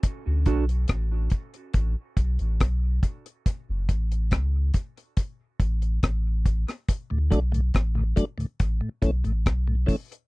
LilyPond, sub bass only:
\new Staff \with { instrumentName = "Sub bass" } { \clef bass \time 4/4 \key d \lydian \tempo 4 = 70 r16 d,16 b,,8 a,,8 r8 a,,16 r16 b,,16 a,,16 b,,8 r8 | r16 fis,,16 a,,8 cis,8 r4 a,,8 a,,8. r16 | r16 d,16 b,,8 a,,8 r8 a,,16 r16 b,,16 a,,16 b,,8 r8 | }